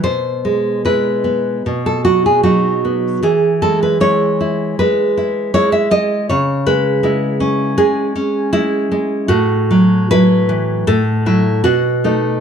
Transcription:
\new Staff \with { instrumentName = "Nylon-string guitar" } { \time 4/4 \key e \major \tempo 4 = 78 << { c''4 b'4~ b'16 a'16 fis'16 gis'16 fis'4 | gis'8 a'16 b'16 cis''4 b'4 cis''16 e''16 dis''8 | cis''8 b'4. gis'4 e'4 | fis'4 b'4 a'4 fis'4 | } \\ { b,8 gis8 <gis e'>8 b8 b,8 fis8 <fis dis'>8 b8 | e8 gis8 <gis e'>8 e'8 gis8 e'8 <gis e'>8 gis8 | cis8 gis8 <gis e'>8 cis'8 gis8 cis'8 gis8 gis8 | a,8 fis8 <fis e'>8 e8 a,8 <fis e'>8 b,8 <a dis'>8 | } >> }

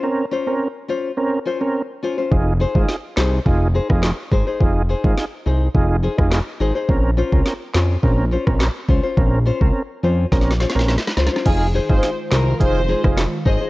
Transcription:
<<
  \new Staff \with { instrumentName = "Violin section" } { \time 4/4 \key f \minor \tempo 4 = 105 r1 | r1 | r1 | r1 |
r1 | aes'16 r8 c''8 r16 bes'8 c''8. r8. ees''16 r16 | }
  \new Staff \with { instrumentName = "Nylon-string guitar" } { \time 4/4 \key f \minor r8 <des' f' c''>16 r8. <des' f' c''>16 r8. <des' f' c''>16 r8. <des' f' c''>16 <des' f' c''>16 | r8 <ees' aes' c''>16 r8. <ees' aes' c''>16 r8. <ees' aes' c''>16 r8. <ees' aes' c''>16 <ees' aes' c''>16 | r8 <ees' aes' c''>16 r8. <ees' aes' c''>16 r8. <ees' aes' c''>16 r8. <ees' aes' c''>16 <ees' aes' c''>16 | r8 <des' f' c''>16 r8. <des' f' c''>16 r8. <des' f' c''>16 r8. <des' f' c''>16 <des' f' c''>16 |
r8 <des' f' c''>16 r8. <des' f' c''>16 r8. <des' f' c''>16 r8. <des' f' c''>16 <des' f' c''>16 | r8 <ees' aes' c''>16 r8. <ees' aes' c''>16 r8. <ees' aes' c''>16 r8. <ees' aes' c''>16 <ees' aes' c''>16 | }
  \new Staff \with { instrumentName = "Tonewheel organ" } { \time 4/4 \key f \minor <c' des' bes'>16 r8 <c' des' bes'>16 r4 <c' des' bes'>16 r8 <c' des' bes'>16 r4 | <ees' f' aes'>16 r8 <ees' f' aes'>16 r4 <ees' f' aes'>16 r8 <ees' f' aes'>16 r4 | <ees' f' aes'>16 r8 <ees' f' aes'>16 r4 <ees' f' aes'>16 r8 <ees' f' aes'>16 r4 | <c' des' bes'>16 r8 <c' des' bes'>16 r4 <c' des' bes'>16 r8 <c' des' bes'>16 r4 |
<c' des' bes'>16 r8 <c' des' bes'>16 r4 <c' des' bes'>16 r8 <c' des' bes'>16 r4 | <ees' f' aes'>16 r8 <ees' f' aes'>16 r4 <ees' f' aes'>16 r8 <ees' f' aes'>16 r4 | }
  \new Staff \with { instrumentName = "Analog synth pad" } { \clef bass \time 4/4 \key f \minor r1 | r1 | r1 | r1 |
r1 | <ees aes f'>1 | }
  \new Staff \with { instrumentName = "Analog synth bass" } { \clef bass \time 4/4 \key f \minor r1 | f,,8. aes,,16 r8 c,8 f,,8. f,,8 r16 aes,,16 r16 | f,,8. aes,,16 r8 c,8 f,,8. f,,8 r16 aes,,16 r16 | bes,,8. des,16 r8 f,8 bes,,8. bes,,8 r16 des,16 r16 |
bes,,8. des,16 r8 f,8 bes,,8. bes,,8 r16 des,16 r16 | f,,8. aes,,16 r8 c,8 f,,8. f,,8 r16 aes,,16 r16 | }
  \new DrumStaff \with { instrumentName = "Drums" } \drummode { \time 4/4 r4 r4 r4 r4 | bd8. bd16 sn8 <hc sn>8 bd8. <bd ss>16 <hc sn>8 bd8 | bd8. bd16 sn4 bd8. <bd ss>16 <hc sn>4 | bd8. bd16 sn8 <hc sn>8 bd8. <bd ss>16 <hc sn>8 bd8 |
bd8. bd16 r4 \tuplet 3/2 { <bd sn>16 sn16 sn16 sn16 sn16 sn16 sn16 sn16 sn16 sn16 sn16 sn16 } | <cymc hh bd>8. bd16 <hh sn>8 <hc sn>8 <hh bd>8. <bd ss>16 <hc hh sn>8 bd8 | }
>>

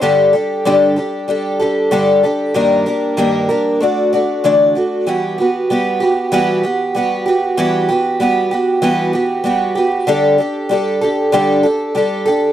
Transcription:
\new Staff \with { instrumentName = "Twelve-string acoustic guitar" } { \time 4/4 \key e \minor \tempo 4 = 96 <g, d g d' g' a'>8 <g d' g' a'>8 <g, d g d' g' a'>8 <g d' g' a'>8 <g d' g' a'>8 <g d' g' a'>8 <g, d g d' g' a'>8 <g d' g' a'>8 | <g, ees g bes d' bes'>8 <g bes d' bes'>8 <g, ees g bes d' bes'>8 <g bes d' bes'>8 <a d' fis' d''>8 <a d' fis' d''>8 <d e a d' fis' d''>8 <a d' fis' d''>8 | <e g b fis' g'>8 <b fis' g'>8 <g b fis' g'>8 <b fis' g'>8 <e g b fis' g'>8 <b fis' g'>8 <g b fis' g'>8 <b fis' g'>8 | <e g b fis' g'>8 <b fis' g'>8 <g b fis' g'>8 <b fis' g'>8 <e g b fis' g'>8 <b fis' g'>8 <g b fis' g'>8 <b fis' g'>8 |
<d g d' g' a'>8 <d' g' a'>8 <g d' g' a'>8 <d' g' a'>8 <d g d' g' a'>8 <d' g' a'>8 <g d' g' a'>8 <d' g' a'>8 | }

